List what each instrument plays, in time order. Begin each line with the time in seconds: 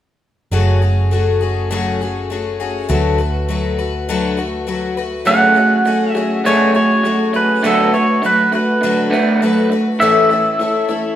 0.51 picked electric bass F#1, twelve-string acoustic guitar F#2 C#3 A3 C#4 F#4 G#4
0.82 twelve-string acoustic guitar A3 C#4 F#4 G#4
1.11 twelve-string acoustic guitar A3 C#4 F#4 G#4
1.41 twelve-string acoustic guitar A3 C#4 F#4 G#4
1.71 twelve-string acoustic guitar F#2 C#3 A3 C#4 F#4 G#4
2.01 twelve-string acoustic guitar A3 C#4 F#4 G#4
2.30 twelve-string acoustic guitar A3 C#4 F#4 G#4
2.60 twelve-string acoustic guitar A3 C#4 F#4 G#4
2.89 picked electric bass D2, twelve-string acoustic guitar D3 F#3 A3 F#4 B4
3.18 twelve-string acoustic guitar A3 F#4 B4
3.49 twelve-string acoustic guitar F#3 A3 F#4 B4
3.79 twelve-string acoustic guitar A3 F#4 B4
4.09 twelve-string acoustic guitar D3 F#3 A3 F#4 B4
4.37 twelve-string acoustic guitar A3 F#4 B4
4.67 twelve-string acoustic guitar F#3 A3 F#4 B4
4.97 twelve-string acoustic guitar A3 F#4 B4
5.25 twelve-string acoustic guitar F#2 C#3 A3 C#4 F#4 G#4, clean electric guitar F#3 A3 C#4, pedal steel guitar F#5
5.55 clean electric guitar F#3 A3, twelve-string acoustic guitar A3 C#4 F#4 G#4
5.85 clean electric guitar F#3 A3, twelve-string acoustic guitar A3 C#4 F#4 G#4
6.11 clean electric guitar F#3, twelve-string acoustic guitar G#4, pedal steel guitar E5
6.15 clean electric guitar A3, twelve-string acoustic guitar A3 C#4 F#4
6.44 twelve-string acoustic guitar F#2 C#3 A3 C#4 F#4 G#4, clean electric guitar F#3 A3 C#4, pedal steel guitar C#5
6.74 clean electric guitar F#3 A3, twelve-string acoustic guitar A3 C#4 F#4 G#4, pedal steel guitar C#5
7.03 clean electric guitar F#3 A3, twelve-string acoustic guitar A3 C#4 F#4 G#4
7.33 clean electric guitar F#3 A3, twelve-string acoustic guitar A3 C#4 F#4 G#4, pedal steel guitar B4
7.63 clean electric guitar D3 A3 B3, twelve-string acoustic guitar D3 F#3 A3 F#4 B4, pedal steel guitar A4
7.92 clean electric guitar D3 A3, twelve-string acoustic guitar F#4 B4, pedal steel guitar C#5
8.22 clean electric guitar D3 A3, twelve-string acoustic guitar F#3 A3 F#4 B4, pedal steel guitar B4
8.52 clean electric guitar D3 A3, twelve-string acoustic guitar A3 F#4 B4, pedal steel guitar B4
8.81 clean electric guitar D3 A3, twelve-string acoustic guitar D3 F#3 A3 F#4 B4
9.10 clean electric guitar D3 A3 B3, twelve-string acoustic guitar B4
9.14 twelve-string acoustic guitar A3 F#4
9.41 clean electric guitar D3 A3, twelve-string acoustic guitar F#3 A3 F#4 B4
9.70 clean electric guitar D3 A3, twelve-string acoustic guitar F#4 B4
9.74 twelve-string acoustic guitar A3
9.99 clean electric guitar A2 E3 A3, twelve-string acoustic guitar A2 E3 A3 C#4 E4 A4, pedal steel guitar E5
10.29 clean electric guitar A2 E3, twelve-string acoustic guitar A3 C#4 E4 A4
10.59 clean electric guitar A2 E3, twelve-string acoustic guitar A3 C#4 E4 A4
10.88 clean electric guitar A2 E3, twelve-string acoustic guitar A3 C#4 E4 A4